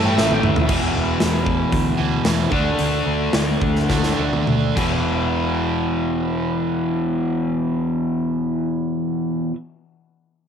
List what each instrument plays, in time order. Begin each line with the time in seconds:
Already playing: fingered electric bass G2, overdriven electric guitar A2 E3 A3
0.05 lead electric guitar G5
0.18 fingered electric bass A1, lead electric guitar E5, snare
0.31 lead electric guitar G5, high tom
0.43 fingered electric bass D2, lead electric guitar E5, mid tom
0.56 floor tom
0.67 fingered electric bass E1, overdriven electric guitar E2 B2 E3, kick, crash
0.96 fingered electric bass E1
1.20 fingered electric bass E1, snare, open hi-hat
1.47 kick
1.73 fingered electric bass D2, kick, open hi-hat
1.97 fingered electric bass D2, overdriven electric guitar E2 B2 E3
2.24 overdriven electric guitar E2 B2 E3, fingered electric bass E2, snare, open hi-hat
2.50 fingered electric bass D2, overdriven electric guitar D3 A3 D4, kick
2.79 fingered electric bass D2, open hi-hat
3.06 fingered electric bass D2
3.33 fingered electric bass D2, snare, open hi-hat
3.62 fingered electric bass D2, kick
3.76 snare
3.89 fingered electric bass D2, overdriven electric guitar D3 A3 D4, kick, snare
4.03 snare
4.17 fingered electric bass D2, overdriven electric guitar D3 A3 D4
4.33 high tom
4.47 fingered electric bass D2, mid tom
4.76 fingered electric bass E1, overdriven electric guitar E2 B2 E3, kick, crash